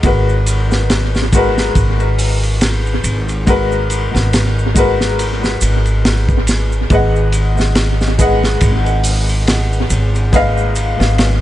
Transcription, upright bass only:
0.04 1.72 G#1 loud
1.76 3.01 G#1 medium
3.04 4.09 G#1 medium
4.15 5.58 G#1 loud
5.61 6.86 G#1 medium
6.90 8.58 G#1 loud
8.62 9.86 G#1 loud
9.90 10.95 G#1 medium
11.00 11.41 G#1 loud

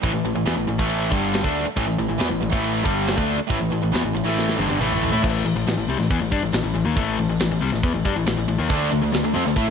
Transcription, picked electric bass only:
0.03 0.13 A1 medium
0.13 0.24 A1 medium
0.24 0.34 A1 medium
0.36 0.46 A1 medium
0.47 0.56 E2 medium
0.57 0.67 A1 medium
0.67 0.78 A1 medium
0.80 1.09 A1 medium
1.12 1.42 G1 medium
1.44 1.64 D2 medium
1.66 muted picked electric bass stroke soft
1.77 1.87 A1 loud
1.88 1.98 A1 medium
1.98 2.08 A1 medium
2.09 2.19 A1 medium
2.20 2.30 E2 medium
2.31 2.41 A1 medium
2.42 2.52 A1 medium
2.53 2.83 A1 loud
2.85 3.15 G1 medium
3.18 3.38 D2 medium
3.39 muted picked electric bass stroke soft
3.50 3.60 A1 medium
3.61 3.71 A1 medium
3.73 3.82 A1 medium
3.83 3.93 A1 medium
3.94 4.03 E2 medium
4.04 4.14 A1 medium
4.15 4.24 A1 medium
4.25 4.55 A1 medium
4.58 4.68 G1 medium
4.69 4.79 G1 medium
4.80 5.10 A1 medium
5.13 5.23 A2 medium
5.24 5.44 A1 loud
5.45 5.55 A1 medium
5.55 5.66 A1 medium
5.67 5.76 A1 medium
5.77 5.87 A1 medium
5.88 5.98 C2 loud
5.99 6.09 A1 medium
6.11 6.20 E2 medium
6.21 6.31 A1 medium
6.32 6.42 G2 medium
6.43 6.53 A1 medium
6.54 6.64 A1 medium
6.64 6.74 A1 medium
6.75 6.85 A1 medium
6.86 6.96 D#2 loud
6.97 7.17 A1 loud
7.18 7.28 A1 medium
7.29 7.39 A1 medium
7.40 7.50 A1 medium
7.51 7.61 A1 medium
7.62 7.72 C2 loud
7.74 7.82 A1 medium
7.83 7.93 E2 medium
7.95 8.04 A1 medium
8.05 8.15 G2 loud
8.16 8.26 A1 medium
8.27 8.36 A1 medium
8.37 8.47 A1 medium
8.48 8.58 A1 medium
8.59 8.69 D#2 medium
8.70 8.90 D2 loud
8.92 9.02 D2 medium
9.04 9.13 D2 medium
9.15 9.24 D2 medium
9.24 9.34 D2 medium
9.36 9.45 F2 loud
9.47 9.56 D2 medium
9.56 9.66 A2 loud

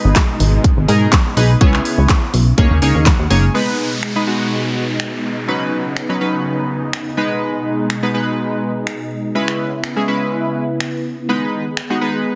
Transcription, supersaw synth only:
0.00 1.59 B2 medium
0.00 1.59 G#3 medium
0.00 1.57 D#4 medium
1.61 3.53 C#3 medium
1.61 2.57 B3 medium
1.61 2.57 E4 medium
2.58 3.54 G#3 medium
2.58 3.53 D#4 medium
3.55 5.46 B2 medium
3.55 5.46 G#3 medium
3.55 9.31 D#4 medium
5.48 7.16 C#3 medium
5.48 7.16 B3 medium
7.18 9.33 B2 medium
7.18 9.33 G#3 medium
9.35 11.27 C#3 medium
9.35 12.35 B3 medium
9.35 11.27 E4 medium
11.29 12.35 D#3 medium
11.29 12.35 G#4 medium

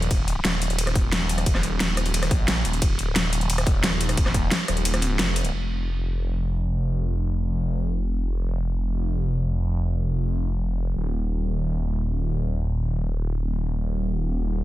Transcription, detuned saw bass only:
0.11 0.43 D#1 loud
0.45 0.94 D#1 loud
0.95 1.79 D#1 loud
1.80 2.30 D#1 loud
2.31 2.64 A#1 loud
2.65 2.81 D#1 loud
2.82 3.14 D#1 loud
3.16 3.65 D#1 loud
3.67 4.50 D#1 loud
4.68 5.18 D#1 loud
5.19 5.52 F1 loud
5.53 10.94 F1 medium
10.96 14.64 D#1 medium

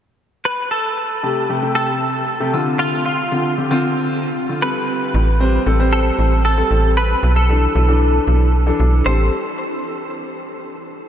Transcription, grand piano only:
1.23 1.42 C3 medium
1.23 1.42 A3 medium
1.23 1.42 G4 medium
1.49 1.59 C3 medium
1.49 1.59 A3 medium
1.49 1.59 G4 medium
1.62 2.19 C3 medium
1.62 2.19 A3 medium
1.62 2.19 G4 loud
2.40 2.53 C3 medium
2.40 2.53 A3 medium
2.40 2.54 G4 loud
2.53 3.16 D3 medium
2.53 3.16 C4 medium
2.53 3.16 F4 medium
3.31 3.51 D3 medium
3.31 3.51 C4 medium
3.31 3.51 F4 medium
3.58 3.67 D3 medium
3.58 3.67 C4 medium
3.58 3.67 G4 medium
3.71 4.28 D3 loud
3.71 4.28 C4 loud
3.71 4.28 F4 loud
4.49 4.62 D3 medium
4.49 4.61 C4 medium
4.49 4.62 F4 medium
4.62 5.25 G3 medium
4.62 5.25 C4 medium
4.62 5.25 A4 medium
5.40 5.59 G3 medium
5.40 5.59 C4 medium
5.40 5.59 C5 loud
5.66 5.76 G3 medium
5.66 5.76 C4 medium
5.66 5.76 A4 loud
5.79 6.36 G3 medium
5.79 6.36 C4 medium
5.79 6.37 C5 medium
6.58 6.97 G3 medium
6.58 6.97 C4 medium
6.58 6.97 A4 medium
7.49 7.68 E3 medium
7.49 7.68 D4 medium
7.49 7.68 A4 medium
7.75 7.85 E3 medium
7.75 7.85 D4 medium
7.75 7.85 A4 medium
7.88 8.45 E3 medium
7.88 8.45 D4 medium
7.88 8.45 A4 loud
8.66 9.06 E3 medium
8.66 9.06 D4 medium
8.66 9.04 A4 loud
9.06 9.30 G3 medium
9.06 9.30 C4 medium
9.06 9.30 A4 medium

